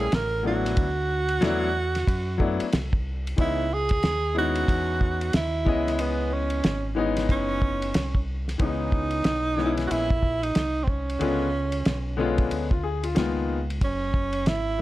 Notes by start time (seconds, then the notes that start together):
Already playing: G#4
0.12 A1 A#4, snare, hi-hat pedal, ride
0.43 F#3 A3 B3 D4 E4
0.47 F#4
0.65 snare, ride
0.77 D2, kick, ride
1.29 ride
1.41 E2 F#3 A3 B3 D4 E4, snare, hi-hat pedal, ride
1.95 snare, ride
2.08 F#2, kick, ride
2.38 F#3 A3 B3 D4 E4, kick
2.60 muted fingered electric bass stroke, ride
2.73 C2, snare, hi-hat pedal, ride
2.93 kick
3.27 ride
3.37 C#2 E3 G#3 B3 C#4 D#4, kick, ride
3.41 E4
3.74 G#4
3.89 kick, ride
4.03 D#2, snare, hi-hat pedal, ride
4.35 G#3 B3 C#4 D#4 E4 F#4
4.55 ride
4.68 E2, kick, ride
5.01 kick
5.21 ride
5.33 D#2 E4, snare, hi-hat pedal, ride
5.65 C#2 E3 G#3 B3 C#4 D#5, kick
5.87 snare, ride
5.99 B3, ride
6.33 C#4
6.50 ride
6.64 G#1, snare, hi-hat pedal, ride
6.95 E3 G#3 B3 C#4 D#4
7.17 snare, ride
7.29 F#1 C#4, kick, ride
7.62 kick
7.82 ride
7.94 C2, snare, hi-hat pedal, ride
8.15 kick
8.48 snare, ride
8.58 C#2 E3 G#3 B3 C#4 D#4, kick, ride
8.92 kick
9.11 ride
9.24 B1, snare, hi-hat pedal, ride
9.56 E3 G#3 B3 C#4 D#4, snare
9.66 E4
9.77 snare, ride
9.87 F#4, ride
9.91 A#1 E4
10.10 kick
10.23 kick
10.43 D#4, ride
10.55 C2, snare, hi-hat pedal, ride
10.84 C4, kick
10.88 C#4
11.10 ride
11.19 C#2 D3 G#3 B3 C#4 F4, ride
11.72 ride
11.85 B1, snare, hi-hat pedal, ride
12.17 D3 G#3 B3 C#4 F4
12.38 kick, ride
12.51 D2, ride
12.71 F4, kick
12.83 G#4
13.03 F4, ride
13.15 C#2 D#3 G#3 A#3 B3 F4, snare, hi-hat pedal, ride
13.70 ride
13.81 F#1 C#4, kick, ride
14.14 kick
14.33 ride
14.46 G#1 E4, snare, hi-hat pedal, ride
14.78 E3